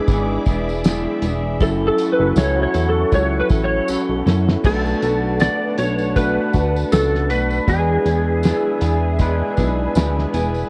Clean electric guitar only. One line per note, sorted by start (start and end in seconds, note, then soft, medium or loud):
0.09 0.46 E3 medium
0.09 0.47 B3 medium
0.09 0.47 D4 medium
0.09 0.46 G#4 medium
0.47 0.84 B3 soft
0.47 0.85 D4 medium
0.47 0.85 G#4 medium
0.85 1.22 E3 medium
0.85 1.23 B3 medium
0.85 1.23 D4 medium
0.85 1.22 G#4 medium
1.23 1.61 B3 soft
1.23 1.61 D4 medium
1.23 1.61 G#4 medium
1.61 1.99 F#3 medium
1.61 1.99 C#4 medium
1.61 1.99 E4 medium
1.61 1.97 A4 medium
1.99 2.36 C#4 soft
1.99 2.36 E4 medium
1.99 2.37 A4 medium
2.37 2.74 F#3 medium
2.37 2.75 C#4 medium
2.37 2.74 E4 medium
2.37 2.73 A4 medium
2.74 3.12 C#4 soft
2.74 3.12 E4 soft
2.74 3.12 A4 medium
3.12 3.50 F#3 medium
3.12 3.51 C#4 medium
3.12 3.50 E4 medium
3.12 3.49 A4 medium
3.50 3.87 C#4 soft
3.50 3.88 E4 soft
3.50 3.88 A4 medium
3.88 4.26 F#3 medium
3.88 4.26 C#4 medium
3.88 4.26 E4 medium
3.88 4.24 A4 medium
4.26 4.64 C#4 soft
4.26 4.65 E4 soft
4.26 4.64 A4 medium
4.64 5.02 B2 medium
4.64 5.02 A3 medium
4.64 5.02 D4 medium
4.64 5.01 F#4 medium
5.02 5.39 A3 soft
5.02 5.40 D4 soft
5.02 5.40 F#4 medium
5.40 5.78 B2 medium
5.40 5.78 A3 medium
5.40 5.78 D4 medium
5.40 5.76 F#4 medium
5.78 6.15 A3 soft
5.78 6.16 D4 medium
5.78 6.16 F#4 medium
6.16 6.54 B2 medium
6.16 6.54 A3 medium
6.16 6.54 D4 medium
6.16 6.53 F#4 medium
6.54 6.91 A3 soft
6.54 6.92 D4 soft
6.54 6.92 F#4 medium
6.91 7.30 B2 medium
6.91 7.30 A3 soft
6.91 7.30 D4 medium
6.91 7.28 F#4 medium
7.29 7.68 A3 soft
7.29 7.67 D4 soft
7.29 7.68 F#4 medium
7.67 8.06 E3 medium
7.67 8.06 B3 medium
7.67 8.06 D4 medium
7.67 8.04 G#4 medium
8.05 8.43 B3 medium
8.05 8.44 D4 medium
8.05 8.44 G#4 medium
8.44 8.82 E3 medium
8.44 8.82 B3 medium
8.44 8.81 D4 medium
8.44 8.80 G#4 medium
8.81 9.19 B3 soft
8.81 9.19 D4 medium
8.81 9.19 G#4 medium
9.19 9.58 E3 medium
9.19 9.58 B3 medium
9.19 9.57 D4 medium
9.19 9.56 G#4 medium
9.57 9.95 B3 medium
9.57 9.96 D4 medium
9.57 9.95 G#4 medium
9.95 10.34 E3 medium
9.95 10.34 B3 medium
9.95 10.33 D4 medium
9.95 10.32 G#4 medium
10.33 10.69 B3 medium
10.33 10.69 D4 medium
10.33 10.69 G#4 medium